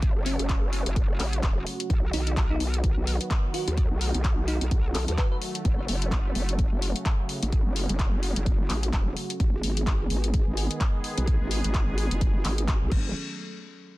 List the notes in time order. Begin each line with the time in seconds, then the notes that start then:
Already playing: A1 C#3 F#3 A3 F#4
0.02 kick, closed hi-hat
0.16 F#1
0.26 C#4, open hi-hat
0.39 F#1, closed hi-hat
0.49 kick, clap, closed hi-hat
0.73 open hi-hat
0.86 F#1, closed hi-hat
0.96 kick, closed hi-hat
1.20 A1, clap, open hi-hat
1.33 closed hi-hat
1.43 E1, kick, clap, closed hi-hat
1.67 open hi-hat
1.80 closed hi-hat
1.90 B1 D#3 B3, kick, closed hi-hat
2.13 B1 D#4, open hi-hat
2.27 D#4, closed hi-hat
2.37 kick, clap, closed hi-hat
2.50 D#4
2.60 B1, open hi-hat
2.74 closed hi-hat
2.84 kick, closed hi-hat
2.97 B1
3.07 open hi-hat
3.21 closed hi-hat
3.31 kick, clap, closed hi-hat
3.54 F#4, open hi-hat
3.68 D#2, closed hi-hat
3.77 A3, kick, closed hi-hat
3.91 B1
4.01 open hi-hat
4.14 B1, closed hi-hat
4.24 kick, clap, closed hi-hat
4.48 D#4, open hi-hat
4.61 B1, closed hi-hat
4.71 B1, kick, closed hi-hat
4.95 B1 A4, clap, open hi-hat
5.08 D#2 A4, closed hi-hat
5.18 B4, kick, clap, closed hi-hat
5.32 B4
5.42 open hi-hat
5.55 closed hi-hat
5.65 F#1 C#3, kick, closed hi-hat
5.88 F#1, open hi-hat
6.02 closed hi-hat
6.12 kick, clap, closed hi-hat
6.35 F#1, open hi-hat
6.49 closed hi-hat
6.59 kick, closed hi-hat
6.72 F#1
6.82 open hi-hat
6.96 closed hi-hat
7.06 kick, clap, closed hi-hat
7.29 open hi-hat
7.43 A1, closed hi-hat
7.52 kick, closed hi-hat
7.66 F#1
7.76 open hi-hat
7.89 F#1, closed hi-hat
7.99 kick, clap, closed hi-hat
8.23 open hi-hat
8.36 F#1, closed hi-hat
8.46 kick, closed hi-hat
8.70 A1, clap, open hi-hat
8.83 closed hi-hat
8.93 E1, kick, clap, closed hi-hat
9.17 open hi-hat
9.30 closed hi-hat
9.40 G#1 D#3 G#3 B3 G#4, kick, closed hi-hat
9.63 G#1, open hi-hat
9.77 closed hi-hat
9.87 kick, clap, closed hi-hat
10.10 G#1, open hi-hat
10.24 closed hi-hat
10.34 kick, closed hi-hat
10.47 G#1
10.57 open hi-hat
10.71 closed hi-hat
10.81 kick, clap, closed hi-hat
11.04 open hi-hat
11.18 B1, closed hi-hat
11.27 kick, closed hi-hat
11.41 G#1
11.51 open hi-hat
11.64 G#1, closed hi-hat
11.74 kick, clap, closed hi-hat
11.98 open hi-hat
12.11 F#1, closed hi-hat
12.21 kick, closed hi-hat
12.45 G#1, clap, open hi-hat
12.58 closed hi-hat
12.68 kick, clap, closed hi-hat
12.82 B1
12.92 F#1 F#3 A3 C#4 A4, kick, crash